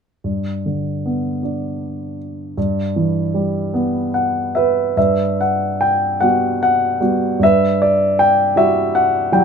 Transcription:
0.24 2.53 G2 soft
0.66 2.16 D3 soft
1.06 2.54 B3 soft
1.43 2.54 D4 soft
2.57 4.93 G2 soft
2.96 4.52 E3 soft
3.34 4.93 G3 soft
3.74 4.93 B3 soft
4.14 4.52 F#5 soft
4.55 4.97 B4 medium
4.55 4.94 E5 soft
4.97 7.38 G2 soft
4.97 6.18 B4 soft
4.97 5.40 E5 medium
5.41 5.82 F#5 medium
5.81 6.23 G5 medium
6.20 6.99 G3 soft
6.20 6.99 B3 soft
6.20 7.00 F#4 soft
6.20 6.61 F#5 medium
6.63 7.44 F#5 medium
7.01 7.40 G3 soft
7.01 7.40 B3 soft
7.01 7.40 F#4 soft
7.40 9.45 G2 soft
7.40 7.83 E5 medium
7.44 8.55 B4 soft
7.82 8.21 D5 medium
8.19 8.58 G5 medium
8.56 9.30 G3 soft
8.56 9.30 E4 soft
8.56 9.31 F#4 soft
8.56 8.93 E5 medium
8.95 9.34 F#5 medium
9.32 9.45 F#3 soft
9.32 9.45 G3 soft
9.32 9.45 E4 soft
9.32 9.45 G5 medium

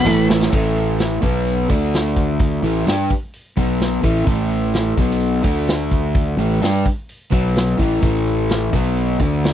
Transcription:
0.00 0.27 B5 medium
0.04 0.49 A1 medium
0.04 0.51 A2 medium
0.04 0.51 E3 medium
0.04 0.28 A3 medium
0.04 0.52 A3 loud
0.04 0.28 C#4 medium
0.04 0.27 E4 medium
0.04 0.27 A4 medium
0.04 mid tom medium
0.04 tambourine medium
0.08 0.53 E4 medium
0.08 0.53 A4 medium
0.08 0.54 C#5 medium
0.08 0.53 E5 medium
0.28 0.53 C#4 soft
0.28 0.52 E4 medium
0.28 0.52 A4 medium
0.28 snare loud
0.42 snare medium
0.52 1.19 A1 medium
0.52 1.22 A2 medium
0.52 1.22 E3 medium
0.52 1.23 A3 medium
0.52 kick medium
0.52 crash medium
0.76 open hi-hat soft
0.99 snare medium
0.99 open hi-hat medium
1.22 1.66 B1 medium
1.22 1.68 B2 medium
1.22 1.69 F#3 medium
1.22 1.69 B3 medium
1.22 kick medium
1.22 open hi-hat soft
1.47 open hi-hat medium
1.69 2.59 D2 medium
1.69 2.62 D3 medium
1.69 2.62 A3 medium
1.69 2.63 D4 medium
1.69 kick medium
1.69 open hi-hat soft
1.93 snare medium
1.93 open hi-hat medium
2.17 kick medium
2.17 open hi-hat soft
2.39 kick medium
2.39 open hi-hat medium
2.63 2.85 A1 medium
2.63 2.86 A2 medium
2.63 2.86 E3 medium
2.63 2.86 A3 medium
2.63 open hi-hat soft
2.86 3.08 G2 medium
2.86 3.09 G3 medium
2.86 3.09 D4 medium
2.86 3.10 G4 medium
2.86 snare medium
2.86 open hi-hat soft
3.10 kick medium
3.10 open hi-hat soft
3.33 open hi-hat medium
3.57 4.01 B1 medium
3.57 4.03 B2 medium
3.57 4.03 F#3 medium
3.57 4.03 B3 medium
3.57 kick medium
3.57 open hi-hat soft
3.80 snare medium
3.80 open hi-hat medium
4.03 4.25 A1 medium
4.03 4.25 A2 medium
4.03 4.26 E3 medium
4.03 4.27 A3 medium
4.03 kick medium
4.03 open hi-hat soft
4.26 4.93 A1 medium
4.26 4.96 A2 medium
4.26 4.97 E3 medium
4.26 4.97 A3 medium
4.26 kick medium
4.26 open hi-hat medium
4.50 open hi-hat soft
4.74 snare medium
4.74 open hi-hat medium
4.97 5.41 B1 medium
4.97 5.42 B2 medium
4.97 5.43 F#3 medium
4.97 5.44 B3 medium
4.97 kick medium
4.97 open hi-hat soft
5.10 snare soft
5.20 open hi-hat medium
5.43 6.34 D2 medium
5.43 6.36 D3 medium
5.43 6.37 A3 medium
5.43 6.37 D4 medium
5.43 kick medium
5.43 open hi-hat soft
5.68 snare medium
5.68 open hi-hat medium
5.91 kick medium
5.91 open hi-hat soft
6.15 kick medium
6.15 open hi-hat medium
6.37 6.59 A1 medium
6.37 6.61 A2 medium
6.37 6.61 E3 medium
6.37 6.61 A3 medium
6.37 open hi-hat soft
6.61 6.83 G2 medium
6.61 6.84 G3 medium
6.61 6.84 D4 medium
6.61 6.85 G4 medium
6.61 snare medium
6.61 open hi-hat medium
6.86 kick medium
6.86 open hi-hat soft
7.09 open hi-hat medium
7.31 7.75 B1 medium
7.31 7.78 B2 medium
7.31 7.78 F#3 medium
7.31 7.78 B3 medium
7.31 kick medium
7.31 open hi-hat soft
7.56 snare medium
7.56 open hi-hat soft
7.78 8.00 A1 medium
7.78 8.00 A2 medium
7.78 8.02 E3 medium
7.78 8.02 A3 medium
7.78 kick medium
7.78 open hi-hat soft
8.02 8.69 A1 medium
8.02 8.71 A2 medium
8.02 8.72 E3 medium
8.02 8.72 A3 medium
8.02 kick medium
8.02 open hi-hat medium
8.27 open hi-hat soft
8.49 snare medium
8.49 open hi-hat medium
8.73 9.16 B1 medium
8.73 9.19 B2 medium
8.73 9.19 F#3 medium
8.73 9.20 B3 medium
8.73 kick medium
8.73 open hi-hat soft
8.97 open hi-hat medium
9.19 9.53 D2 medium
9.19 9.53 D3 medium
9.19 9.53 A3 medium
9.19 9.53 D4 medium
9.19 kick medium
9.19 open hi-hat soft
9.44 snare medium
9.44 open hi-hat medium

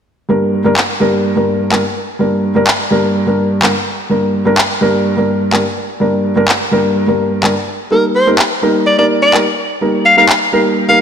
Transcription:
0.29 0.62 G2 medium
0.29 0.62 G3 medium
0.29 0.62 A#3 medium
0.29 0.62 D4 medium
0.29 0.62 A#4 medium
0.65 0.73 G2 medium
0.65 0.73 G3 medium
0.65 0.73 A#3 medium
0.65 0.73 D4 medium
0.65 0.74 A#4 medium
0.77 clap loud
1.00 1.33 G2 medium
1.00 1.33 G3 medium
1.00 1.34 A#3 medium
1.00 1.34 D4 medium
1.00 1.34 A#4 medium
1.36 1.69 G2 medium
1.36 1.69 G3 medium
1.36 1.69 A#3 medium
1.36 1.70 D4 medium
1.36 1.70 A#4 medium
1.72 1.80 G2 medium
1.72 1.80 G3 medium
1.72 1.80 A#3 medium
1.72 1.81 D4 medium
1.72 1.81 A#4 medium
1.72 clap loud
2.19 2.52 G2 medium
2.19 2.53 G3 medium
2.19 2.53 A#3 medium
2.19 2.53 D4 medium
2.19 2.53 A#4 medium
2.55 2.63 G2 medium
2.55 2.64 G3 medium
2.55 2.64 A#3 medium
2.55 2.64 D4 medium
2.55 2.64 A#4 medium
2.67 clap loud
2.91 3.24 G2 medium
2.91 3.24 G3 medium
2.91 3.24 A#3 medium
2.91 3.24 D4 medium
2.91 3.25 A#4 medium
3.26 3.60 G2 medium
3.26 3.60 G3 medium
3.26 3.60 A#3 medium
3.26 3.60 D4 medium
3.26 3.60 A#4 medium
3.62 3.71 G2 medium
3.62 3.71 G3 medium
3.62 3.71 A#3 medium
3.62 3.71 D4 medium
3.62 3.71 A#4 medium
3.62 clap loud
4.10 4.43 G2 medium
4.10 4.43 G3 medium
4.10 4.43 A#3 medium
4.10 4.43 D4 medium
4.10 4.43 A#4 medium
4.45 4.54 G2 medium
4.45 4.54 G3 medium
4.45 4.54 A#3 medium
4.45 4.54 D4 medium
4.45 4.54 A#4 medium
4.58 clap loud
4.81 5.14 G2 medium
4.81 5.14 G3 medium
4.81 5.15 A#3 medium
4.81 5.15 D4 medium
4.81 5.15 A#4 medium
5.17 5.50 G2 medium
5.17 5.50 G3 medium
5.17 5.50 A#3 medium
5.17 5.50 D4 medium
5.17 5.51 A#4 medium
5.53 5.61 G2 medium
5.53 5.61 G3 medium
5.53 5.61 A#3 medium
5.53 5.61 D4 medium
5.53 5.62 A#4 medium
5.53 clap loud
6.00 6.33 G2 medium
6.00 6.33 G3 medium
6.00 6.34 A#3 medium
6.00 6.34 D4 medium
6.00 6.34 A#4 medium
6.36 6.44 G2 medium
6.36 6.44 G3 medium
6.36 6.45 A#3 medium
6.36 6.45 D4 medium
6.36 6.45 A#4 medium
6.48 clap loud
6.72 7.05 G2 medium
6.72 7.05 G3 medium
6.72 7.05 A#3 medium
6.72 7.05 D4 medium
6.72 7.05 A#4 medium
7.07 7.40 G2 medium
7.07 7.41 G3 medium
7.07 7.41 A#3 medium
7.07 7.41 D4 medium
7.07 7.41 A#4 medium
7.43 7.51 G2 medium
7.43 7.52 G3 medium
7.43 7.52 A#3 medium
7.43 7.52 D4 medium
7.43 7.52 A#4 medium
7.43 clap loud
7.91 8.24 G3 medium
7.91 8.24 A#3 medium
7.91 8.24 D#4 medium
7.91 8.05 A#4 medium
7.91 8.24 A#4 medium
8.15 8.29 C5 medium
8.26 8.35 G3 medium
8.26 8.35 A#3 medium
8.26 8.35 D#4 medium
8.26 8.35 A#4 medium
8.39 clap loud
8.62 8.95 G3 medium
8.62 8.95 A#3 medium
8.62 8.96 D#4 medium
8.62 8.96 A#4 medium
8.87 8.94 D5 medium
8.98 9.31 G3 medium
8.98 9.31 A#3 medium
8.98 9.31 D#4 medium
8.98 9.32 A#4 medium
8.98 9.06 D5 medium
9.22 9.36 D5 medium
9.33 9.42 G3 medium
9.33 9.42 A#3 medium
9.33 9.42 D#4 medium
9.33 9.43 A#4 medium
9.33 clap loud
9.81 10.14 G3 medium
9.81 10.14 A#3 medium
9.81 10.15 D#4 medium
9.81 10.15 A#4 medium
10.05 10.13 F5 medium
10.17 10.25 G3 medium
10.17 10.25 A#3 medium
10.17 10.26 D#4 medium
10.17 10.26 A#4 loud
10.17 10.25 F5 medium
10.29 clap loud
10.52 10.86 G3 medium
10.52 10.86 A#3 medium
10.52 10.86 D#4 medium
10.52 10.86 A#4 loud
10.88 11.02 G3 medium
10.88 11.02 A#3 medium
10.88 11.02 D#4 medium
10.88 11.02 A#4 medium
10.88 10.96 F5 medium

